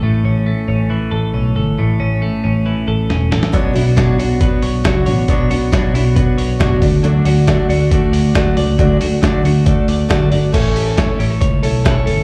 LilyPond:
<<
  \new Staff \with { instrumentName = "Clean electric guitar" } { \time 4/4 \key a \major \tempo 4 = 137 <a, e a cis' a'>8 cis'8 a8 cis'8 e8 a'8 cis'8 a'8 | a,8 cis'8 a8 cis'8 e8 a'8 cis'8 a'8 | b,8 e'16 fis'16 d'8 fis'8 b8 cis''8 fis'8 cis''8 | b,8 fis'8 d'8 e'16 fis'16 b8 cis''8 fis'8 d8 |
d8 fis'8 d'8 fis'8 a8 d''8 fis'8 d''8 | d8 fis'8 d'8 fis'8 a8 d''8 fis'8 d''8 | <a cis''>8 g'16 a'16 cis''8 g'16 a'16 cis''8 a'8 b'16 cis''16 a'8 | }
  \new Staff \with { instrumentName = "Steel-string acoustic guitar" } { \time 4/4 \key a \major r1 | r1 | <b, fis b d' fis' cis''>8 <b d' fis' cis''>8 <b, fis b d' fis' cis''>8 <b d' fis' cis''>8 <b d' fis' cis''>4 <b, fis b d' fis' cis''>8 <b d' fis' cis''>8 | <b, fis b d' fis' cis''>8 <b d' fis' cis''>8 <b, fis b d' fis' cis''>8 <b d' fis' cis''>8 <b d' fis' cis''>4 <b, fis b d' fis' cis''>8 <a d' fis' d''>8 |
<d fis a d' fis' d''>8 <a d' fis' d''>8 <d fis a d' fis' d''>8 <a d' fis' d''>8 <a d' fis' d''>4 <d fis a d' fis' d''>8 <a d' fis' d''>8 | <d fis a d' fis' d''>8 <a d' d''>8 <d fis a d' fis' d''>8 <a d' fis'>8 <a d' fis' d''>4 <d fis a d' fis' d''>8 <a d' fis' d''>8 | <a cis' e' a' cis''>4 <cis' e' a' cis''>8 <e' a' cis''>4 <e' a' cis''>8 <cis' e' a' cis''>4 | }
  \new Staff \with { instrumentName = "Picked electric bass" } { \clef bass \time 4/4 \key a \major a,,8 a,,8. r16 a,,8. r16 a,,8 b,,8 g,,8 | a,,8 a,,8. r16 a,,8. r16 a,,8 e,,8 a,,8 | b,,8 b,,8. r16 b,,8. r16 b,,8 cis,8 a,,8 | b,,8 b,,8. r16 b,,8. r16 b,,8 fis,,8 d,8~ |
d,8 d,8. r16 d,8. r16 d,8 d,8 cis,8 | d,8 d,8. r16 d,8. r16 d,8 d,8 g,,8 | a,,4~ a,,16 r16 a,,8 cis,8 b,,4 g,,8 | }
  \new DrumStaff \with { instrumentName = "Drums" } \drummode { \time 4/4 r4 r4 r4 r4 | r4 r4 r4 sn8 sn16 sn16 | <hh bd>8 hho8 <hh bd sn>8 hho8 <hh bd>8 hho8 <hh bd sn>8 hho8 | <hh bd>8 hho8 <hh bd sn>8 hho8 <hh bd>8 hho8 <hh bd sn>8 <hho bd>8 |
hh8 hho8 <hh bd sn>8 hho8 <hh bd>8 hho8 <hh bd sn>8 hho8 | <hh bd>8 hho8 <hh bd sn>8 hho8 <hh bd>8 hho8 <hh bd sn>8 hho8 | <cymc hh bd>8 hho8 <hh bd sn>8 hho8 <hh bd>8 hho8 <hh bd sn>8 hho8 | }
>>